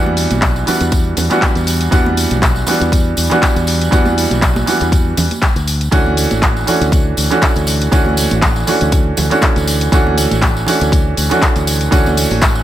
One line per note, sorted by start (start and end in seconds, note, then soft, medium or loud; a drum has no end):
0.00 0.25 E2 loud
0.00 0.64 E3 medium
0.00 0.64 G3 medium
0.00 0.64 B3 medium
0.00 0.64 D4 medium
0.00 0.65 F#4 loud
0.06 high conga medium
0.17 open hi-hat loud
0.17 tambourine medium
0.31 0.62 B1 medium
0.31 closed hi-hat soft
0.31 tambourine soft
0.31 high conga medium
0.42 kick loud
0.42 clap loud
0.42 closed hi-hat medium
0.42 tambourine soft
0.56 tambourine soft
0.66 1.27 E3 medium
0.66 1.27 G3 medium
0.66 1.27 B3 medium
0.66 1.28 D4 medium
0.66 1.28 F#4 medium
0.66 open hi-hat loud
0.66 tambourine loud
0.66 low conga medium
0.81 1.12 E2 medium
0.81 closed hi-hat medium
0.81 tambourine soft
0.92 kick loud
0.92 closed hi-hat medium
0.92 tambourine soft
1.17 1.27 E2 medium
1.17 open hi-hat loud
1.17 tambourine medium
1.17 low conga medium
1.30 1.89 E3 medium
1.30 1.89 G3 medium
1.30 1.89 B3 medium
1.30 1.90 D4 medium
1.30 1.90 F#4 medium
1.30 closed hi-hat medium
1.30 tambourine soft
1.30 high conga medium
1.42 kick loud
1.42 clap loud
1.42 closed hi-hat medium
1.42 tambourine soft
1.55 1.87 E2 medium
1.55 closed hi-hat soft
1.55 tambourine soft
1.67 open hi-hat loud
1.67 tambourine medium
1.81 closed hi-hat medium
1.81 tambourine soft
1.91 2.25 E2 loud
1.91 2.64 E3 medium
1.91 2.64 G3 medium
1.91 2.65 B3 medium
1.91 2.65 D4 medium
1.91 2.65 F#4 loud
1.91 kick loud
1.91 closed hi-hat medium
1.91 tambourine soft
2.06 high conga medium
2.17 open hi-hat loud
2.17 tambourine medium
2.31 2.62 B1 medium
2.31 closed hi-hat soft
2.31 tambourine soft
2.31 high conga medium
2.42 kick loud
2.42 clap loud
2.42 closed hi-hat medium
2.42 tambourine medium
2.56 tambourine soft
2.67 3.27 E3 medium
2.67 3.28 G3 medium
2.67 3.28 B3 medium
2.67 3.28 D4 medium
2.67 3.28 F#4 medium
2.67 open hi-hat loud
2.67 tambourine medium
2.67 low conga medium
2.81 3.13 E2 medium
2.81 closed hi-hat soft
2.81 tambourine soft
2.92 kick loud
2.92 closed hi-hat medium
2.92 tambourine soft
3.17 3.27 E2 medium
3.17 open hi-hat loud
3.17 tambourine medium
3.30 3.89 E3 medium
3.30 3.89 G3 medium
3.30 3.89 B3 medium
3.30 3.90 D4 medium
3.30 3.90 F#4 medium
3.30 closed hi-hat soft
3.30 tambourine soft
3.30 low conga medium
3.42 kick loud
3.42 clap loud
3.42 closed hi-hat medium
3.42 tambourine soft
3.56 3.88 E2 medium
3.56 closed hi-hat soft
3.56 tambourine soft
3.67 open hi-hat loud
3.67 tambourine medium
3.81 closed hi-hat soft
3.81 tambourine soft
3.91 4.25 E2 loud
3.91 4.64 E3 medium
3.91 4.64 G3 medium
3.91 4.64 B3 medium
3.91 4.65 D4 medium
3.91 4.65 F#4 loud
3.91 kick loud
3.91 closed hi-hat medium
3.91 tambourine soft
4.05 tambourine soft
4.05 high conga medium
4.18 open hi-hat loud
4.18 tambourine medium
4.31 4.62 B1 medium
4.31 closed hi-hat soft
4.31 tambourine soft
4.31 high conga medium
4.42 kick loud
4.42 clap loud
4.42 closed hi-hat medium
4.42 tambourine medium
4.56 tambourine soft
4.56 high conga medium
4.66 5.27 E3 medium
4.66 5.27 G3 medium
4.66 5.28 B3 medium
4.66 5.28 D4 medium
4.66 5.28 F#4 medium
4.66 muted fingered electric bass stroke soft
4.66 open hi-hat loud
4.66 tambourine medium
4.66 low conga medium
4.81 5.13 E2 medium
4.81 closed hi-hat soft
4.81 tambourine soft
4.92 kick loud
4.92 closed hi-hat medium
4.92 tambourine soft
5.17 5.27 E2 medium
5.17 open hi-hat loud
5.17 tambourine medium
5.17 low conga medium
5.31 closed hi-hat soft
5.31 tambourine soft
5.31 high conga medium
5.42 kick loud
5.42 clap loud
5.42 closed hi-hat medium
5.42 tambourine soft
5.56 5.87 D2 medium
5.56 closed hi-hat soft
5.56 tambourine soft
5.67 open hi-hat loud
5.67 tambourine medium
5.81 closed hi-hat soft
5.81 tambourine soft
5.91 6.25 D2 medium
5.91 6.64 E3 medium
5.91 6.64 A3 medium
5.91 6.65 C#4 medium
5.91 6.65 D4 medium
5.91 6.65 F#4 loud
5.91 kick loud
5.91 closed hi-hat medium
5.91 tambourine medium
6.06 high conga medium
6.17 open hi-hat loud
6.17 tambourine medium
6.31 6.63 A1 medium
6.31 closed hi-hat soft
6.31 tambourine soft
6.31 high conga medium
6.42 kick loud
6.42 clap loud
6.42 closed hi-hat medium
6.42 tambourine soft
6.57 tambourine soft
6.67 7.27 E3 medium
6.67 7.28 A3 medium
6.67 7.28 C#4 medium
6.67 7.28 D4 medium
6.67 7.28 F#4 medium
6.67 open hi-hat loud
6.67 tambourine medium
6.67 low conga medium
6.81 7.13 D2 medium
6.81 closed hi-hat soft
6.81 tambourine soft
6.92 kick loud
6.92 closed hi-hat medium
6.92 tambourine soft
7.17 7.27 D2 medium
7.17 open hi-hat loud
7.17 tambourine medium
7.30 7.89 E3 medium
7.30 7.89 A3 medium
7.30 7.90 C#4 medium
7.30 7.90 D4 medium
7.30 7.90 F#4 medium
7.30 closed hi-hat soft
7.30 tambourine soft
7.30 low conga medium
7.42 kick loud
7.42 clap loud
7.42 closed hi-hat medium
7.42 tambourine soft
7.56 7.87 D2 medium
7.56 closed hi-hat soft
7.56 tambourine soft
7.67 open hi-hat loud
7.67 tambourine medium
7.81 closed hi-hat soft
7.81 tambourine soft
7.92 8.25 D2 loud
7.92 8.64 E3 medium
7.92 8.64 A3 medium
7.92 8.65 C#4 medium
7.92 8.65 D4 medium
7.92 8.65 F#4 medium
7.92 kick loud
7.92 closed hi-hat medium
7.92 tambourine medium
8.06 high conga medium
8.17 open hi-hat loud
8.17 tambourine medium
8.31 8.63 A1 medium
8.31 closed hi-hat soft
8.31 tambourine soft
8.31 high conga medium
8.42 kick loud
8.42 clap loud
8.42 closed hi-hat medium
8.42 tambourine soft
8.56 tambourine soft
8.67 9.27 E3 medium
8.67 9.27 A3 medium
8.67 9.28 C#4 medium
8.67 9.28 D4 medium
8.67 9.28 F#4 medium
8.67 open hi-hat medium
8.67 tambourine medium
8.67 low conga medium
8.81 9.13 D2 medium
8.81 closed hi-hat soft
8.81 tambourine soft
8.92 kick loud
8.92 closed hi-hat medium
8.92 tambourine medium
9.17 9.28 D2 medium
9.17 open hi-hat loud
9.17 tambourine medium
9.17 low conga medium
9.30 9.89 E3 medium
9.30 9.89 A3 medium
9.30 9.90 C#4 medium
9.30 9.90 D4 medium
9.30 9.90 F#4 medium
9.30 closed hi-hat soft
9.30 tambourine soft
9.30 high conga medium
9.42 kick loud
9.42 clap loud
9.42 closed hi-hat medium
9.42 tambourine soft
9.56 9.88 D2 medium
9.56 closed hi-hat soft
9.56 tambourine soft
9.67 open hi-hat loud
9.67 tambourine medium
9.81 closed hi-hat medium
9.81 tambourine soft
9.92 10.25 D2 medium
9.92 10.64 E3 medium
9.92 10.65 A3 medium
9.92 10.65 C#4 medium
9.92 10.65 D4 medium
9.92 10.65 F#4 loud
9.92 kick loud
9.92 closed hi-hat medium
9.92 tambourine medium
10.07 high conga medium
10.18 open hi-hat loud
10.18 tambourine loud
10.31 10.63 A1 medium
10.31 closed hi-hat soft
10.31 tambourine soft
10.31 high conga medium
10.42 kick loud
10.42 clap loud
10.42 closed hi-hat medium
10.42 tambourine medium
10.57 tambourine soft
10.66 11.27 E3 medium
10.66 11.28 A3 medium
10.66 11.28 C#4 medium
10.66 11.28 D4 medium
10.66 11.28 F#4 medium
10.66 open hi-hat loud
10.66 tambourine medium
10.66 low conga medium
10.81 11.13 D2 medium
10.81 closed hi-hat soft
10.81 tambourine soft
10.92 kick loud
10.92 closed hi-hat medium
10.92 tambourine medium
11.17 11.27 D2 medium
11.17 open hi-hat loud
11.17 tambourine medium
11.30 11.89 E3 medium
11.30 11.89 A3 medium
11.30 11.89 C#4 medium
11.30 11.90 D4 medium
11.30 11.90 F#4 medium
11.30 closed hi-hat medium
11.30 tambourine soft
11.30 low conga medium
11.42 kick loud
11.42 clap loud
11.42 closed hi-hat medium
11.42 tambourine soft
11.56 11.88 D2 medium
11.56 closed hi-hat soft
11.56 tambourine soft
11.67 open hi-hat medium
11.67 tambourine medium
11.81 closed hi-hat medium
11.81 tambourine soft
11.91 12.25 D2 loud
11.91 12.63 E3 medium
11.91 12.63 A3 medium
11.91 12.63 C#4 medium
11.91 12.63 D4 medium
11.91 12.63 F#4 loud
11.91 kick loud
11.91 closed hi-hat medium
11.91 tambourine medium
12.06 tambourine soft
12.06 high conga medium
12.17 open hi-hat loud
12.17 tambourine medium
12.31 12.62 A1 medium
12.31 open hi-hat medium
12.31 tambourine soft
12.31 high conga medium
12.41 kick loud
12.41 clap loud
12.41 closed hi-hat medium
12.41 tambourine medium
12.55 tambourine soft